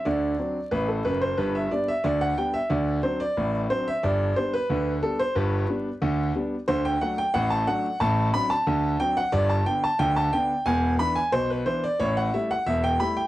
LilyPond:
<<
  \new Staff \with { instrumentName = "Grand piano" } { \time 2/4 \key g \major \tempo 4 = 90 d''4 b'16 a'16 b'16 c''16 | b'16 e''16 d''16 e''16 d''16 fis''16 g''16 e''16 | d''8 c''16 d''8. c''16 e''16 | d''8 c''16 b'8. a'16 c''16 |
b'4 r4 | c''16 g''16 fis''16 g''16 fis''16 a''16 fis''8 | a''8 b''16 a''8. g''16 fis''16 | d''16 a''16 g''16 a''16 g''16 a''16 g''8 |
aes''8 b''16 aes''16 c''16 b'16 c''16 d''16 | cis''16 fis''16 e''16 fis''16 e''16 g''16 b''16 g''16 | }
  \new Staff \with { instrumentName = "Grand piano" } { \clef bass \time 2/4 \key g \major <d, d>8 <fis c' d'>8 <a,, a,>8 <fis,, fis,>8 | <g,, g,>8 <g b d'>8 <d, d>8 <g b d'>8 | <d, d>8 <fis c' d'>8 <a,, a,>8 <fis c' d'>8 | <g,, g,>8 <g b d'>8 <d, d>8 <g b d'>8 |
<g,, g,>8 <g b d'>8 <d, d>8 <g b d'>8 | <d, d>8 <fis a d'>8 <a,, a,>8 <fis a d'>8 | <a,, a,>8 <fis c' d'>8 <d, d>8 <fis c' d'>8 | <g,, g,>8 <d b d'>8 <d, d>8 <d b d'>8 |
<e,, e,>8 <e b d'>8 <b,, b,>8 <e b d'>8 | <a,, a,>8 <g a e'>8 <e,, e,>8 <g a e'>8 | }
>>